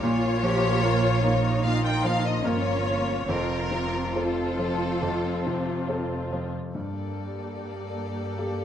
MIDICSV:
0, 0, Header, 1, 6, 480
1, 0, Start_track
1, 0, Key_signature, -2, "minor"
1, 0, Tempo, 807537
1, 18, Time_signature, 4, 2, 24, 8
1, 1458, Tempo, 858369
1, 3858, Tempo, 820793
1, 4969, End_track
2, 0, Start_track
2, 0, Title_t, "Violin section"
2, 0, Program_c, 0, 48
2, 6, Note_on_c, 0, 73, 82
2, 966, Note_off_c, 0, 73, 0
2, 966, Note_on_c, 0, 77, 83
2, 1090, Note_off_c, 0, 77, 0
2, 1099, Note_on_c, 0, 79, 71
2, 1215, Note_off_c, 0, 79, 0
2, 1217, Note_on_c, 0, 77, 78
2, 1338, Note_off_c, 0, 77, 0
2, 1340, Note_on_c, 0, 75, 66
2, 1460, Note_off_c, 0, 75, 0
2, 1462, Note_on_c, 0, 73, 72
2, 1928, Note_off_c, 0, 73, 0
2, 1935, Note_on_c, 0, 70, 66
2, 2416, Note_off_c, 0, 70, 0
2, 2426, Note_on_c, 0, 69, 53
2, 3388, Note_off_c, 0, 69, 0
2, 3862, Note_on_c, 0, 74, 33
2, 3863, Note_on_c, 0, 69, 30
2, 4969, Note_off_c, 0, 69, 0
2, 4969, Note_off_c, 0, 74, 0
2, 4969, End_track
3, 0, Start_track
3, 0, Title_t, "Cello section"
3, 0, Program_c, 1, 48
3, 21, Note_on_c, 1, 65, 67
3, 252, Note_off_c, 1, 65, 0
3, 263, Note_on_c, 1, 67, 66
3, 496, Note_on_c, 1, 65, 60
3, 497, Note_off_c, 1, 67, 0
3, 733, Note_off_c, 1, 65, 0
3, 733, Note_on_c, 1, 63, 62
3, 1457, Note_on_c, 1, 61, 54
3, 1459, Note_off_c, 1, 63, 0
3, 1923, Note_on_c, 1, 65, 50
3, 1926, Note_off_c, 1, 61, 0
3, 3620, Note_off_c, 1, 65, 0
3, 3857, Note_on_c, 1, 43, 30
3, 4969, Note_off_c, 1, 43, 0
3, 4969, End_track
4, 0, Start_track
4, 0, Title_t, "Viola section"
4, 0, Program_c, 2, 48
4, 12, Note_on_c, 2, 58, 69
4, 14, Note_on_c, 2, 65, 66
4, 945, Note_off_c, 2, 58, 0
4, 946, Note_off_c, 2, 65, 0
4, 972, Note_on_c, 2, 58, 58
4, 974, Note_on_c, 2, 65, 62
4, 1449, Note_off_c, 2, 58, 0
4, 1450, Note_off_c, 2, 65, 0
4, 1456, Note_on_c, 2, 58, 56
4, 1457, Note_on_c, 2, 65, 58
4, 1916, Note_off_c, 2, 58, 0
4, 1917, Note_off_c, 2, 65, 0
4, 1928, Note_on_c, 2, 60, 45
4, 1928, Note_on_c, 2, 65, 45
4, 2402, Note_off_c, 2, 60, 0
4, 2402, Note_off_c, 2, 65, 0
4, 2418, Note_on_c, 2, 65, 51
4, 2419, Note_on_c, 2, 60, 50
4, 3726, Note_off_c, 2, 60, 0
4, 3726, Note_off_c, 2, 65, 0
4, 3865, Note_on_c, 2, 67, 30
4, 3870, Note_on_c, 2, 58, 32
4, 4969, Note_off_c, 2, 58, 0
4, 4969, Note_off_c, 2, 67, 0
4, 4969, End_track
5, 0, Start_track
5, 0, Title_t, "Grand piano"
5, 0, Program_c, 3, 0
5, 0, Control_c, 3, 64, 127
5, 18, Note_on_c, 3, 46, 59
5, 27, Control_c, 3, 64, 0
5, 124, Control_c, 3, 64, 127
5, 256, Note_on_c, 3, 53, 43
5, 498, Note_on_c, 3, 70, 44
5, 499, Note_on_c, 3, 58, 41
5, 636, Note_off_c, 3, 53, 0
5, 710, Note_off_c, 3, 58, 0
5, 710, Note_off_c, 3, 70, 0
5, 733, Note_on_c, 3, 58, 42
5, 948, Note_off_c, 3, 46, 0
5, 970, Note_on_c, 3, 46, 44
5, 1118, Note_off_c, 3, 58, 0
5, 1213, Note_on_c, 3, 53, 42
5, 1443, Note_off_c, 3, 46, 0
5, 1455, Note_on_c, 3, 58, 40
5, 1458, Note_off_c, 3, 53, 0
5, 1459, Note_on_c, 3, 70, 40
5, 1666, Note_off_c, 3, 58, 0
5, 1668, Note_off_c, 3, 70, 0
5, 1683, Note_on_c, 3, 58, 35
5, 1923, Note_off_c, 3, 58, 0
5, 1924, Note_on_c, 3, 41, 46
5, 1939, Control_c, 3, 64, 0
5, 2022, Control_c, 3, 64, 127
5, 2162, Note_on_c, 3, 48, 33
5, 2410, Note_on_c, 3, 60, 31
5, 2412, Note_on_c, 3, 69, 32
5, 2554, Note_off_c, 3, 48, 0
5, 2632, Note_off_c, 3, 60, 0
5, 2633, Note_off_c, 3, 69, 0
5, 2652, Note_on_c, 3, 53, 34
5, 2874, Note_off_c, 3, 41, 0
5, 2895, Note_on_c, 3, 41, 36
5, 3042, Note_off_c, 3, 53, 0
5, 3141, Note_on_c, 3, 48, 35
5, 3377, Note_on_c, 3, 60, 33
5, 3382, Note_on_c, 3, 69, 36
5, 3525, Note_off_c, 3, 48, 0
5, 3598, Note_off_c, 3, 60, 0
5, 3600, Note_off_c, 3, 69, 0
5, 3623, Note_on_c, 3, 53, 33
5, 3835, Note_off_c, 3, 41, 0
5, 3859, Note_on_c, 3, 43, 26
5, 3860, Note_off_c, 3, 53, 0
5, 3870, Control_c, 3, 64, 0
5, 3959, Control_c, 3, 64, 127
5, 4814, Note_on_c, 3, 58, 23
5, 4819, Note_on_c, 3, 67, 23
5, 4821, Note_on_c, 3, 69, 27
5, 4969, Note_off_c, 3, 43, 0
5, 4969, Note_off_c, 3, 58, 0
5, 4969, Note_off_c, 3, 67, 0
5, 4969, Note_off_c, 3, 69, 0
5, 4969, End_track
6, 0, Start_track
6, 0, Title_t, "Double bass section"
6, 0, Program_c, 4, 48
6, 25, Note_on_c, 4, 34, 59
6, 1438, Note_off_c, 4, 34, 0
6, 1463, Note_on_c, 4, 31, 51
6, 1929, Note_off_c, 4, 31, 0
6, 1933, Note_on_c, 4, 29, 51
6, 3726, Note_off_c, 4, 29, 0
6, 4969, End_track
0, 0, End_of_file